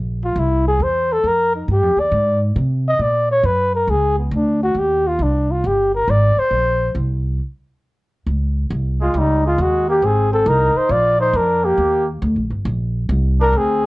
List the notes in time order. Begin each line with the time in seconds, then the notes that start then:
Already playing: A#1
0.25 F4
0.36 C2 E4
0.68 G#4
0.80 E2 C5
1.12 A4
1.24 F2
1.28 A#4
1.55 D#4
1.68 G2 G4
1.82 F2
1.97 D#2 D5
2.12 G#2
2.56 C3
2.88 D#5
2.99 A#2 D5
3.31 C#5
3.43 F#2 B4
3.75 A#4
3.87 C#2 G#4
4.19 B3
4.31 D2 D4
4.63 F#4
4.75 D#2 G4
5.07 F4
5.19 C2 D4
5.51 F4
5.64 G1 G4
5.95 A#4
6.08 G#1 D5
6.37 C5, muted upright bass stroke
6.51 A#1
6.95 C2
8.26 C#2
8.71 C2
9.01 G#3 F4
9.14 C#2 G3
9.19 D#4
9.45 G#3 F4
9.58 D#2 G#3 F#4
9.88 A#3 G4
10.02 G#1 C4 G#4
10.31 C4 A4
10.46 C2 D#4 A#4
10.74 D#4 C5, muted upright bass stroke
10.89 A#1 F4 D5
11.19 D#4 C5
11.33 F2 D4 A#4
11.64 A#3 G4
11.78 D#2
12.22 D2
12.36 A#1
12.50 G1
12.65 A#1
13.09 C2
13.40 D4 A#4
13.53 D2 C4
13.57 G#4